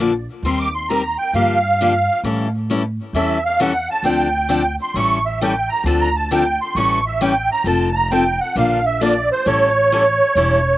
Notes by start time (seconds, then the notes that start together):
Already playing: A#1
0.00 D3 F3 A#3 D4 A4
0.43 D#2 D#3 G3 C4 G4 A#4 C6
0.60 D6
0.75 C6
0.89 D#3 G3 C4 G4 A#4 A#5
1.19 G5
1.33 G2 D3 F3 A#3 D4 G4 F5
1.81 D3 F3 A#3 D4 G4
2.24 A2 E3 G3 C#4 E4 A4
2.70 E3 G3 C#4 E4 A4
3.13 E2 E3 G3 C#4 E4 A4 E5
3.45 F5
3.60 E3 G3 C#4 E4 A4 F#5
3.91 A5
4.03 D2 D3 F3 C4 D4 A4 G5
4.49 D3 F3 C4 D4 A4
4.81 C6
4.94 A1 E3 G3 C#4 E4 A4 C#6
5.26 E5
5.41 E3 G3 C#4 E4 A4 G5
5.69 A#5
5.84 D2 D3 F3 C4 D4 A4 A5
6.01 A#5
6.16 A5
6.31 D3 F3 C4 D4 A4 G5
6.61 C6
6.75 A1 E3 G3 C#4 E4 A4 C#6
7.06 E5
7.21 E3 G3 C#4 E4 A4 G5
7.52 A#5
7.64 F1 F3 C4 D#4 A4 A5
7.95 A#5
8.11 F3 C4 D#4 A4 G5
8.41 F#5
8.56 A#1 D3 F3 A#3 D4 A4 F5
8.86 E5
9.01 D3 F3 A#3 D4 A4 D5
9.32 C5
9.46 A1 E3 G3 C#4 E4 A4 C#5
9.92 E3 G3 C#4 E4 A4
10.35 E1 E3 G3 C#4 E4 A4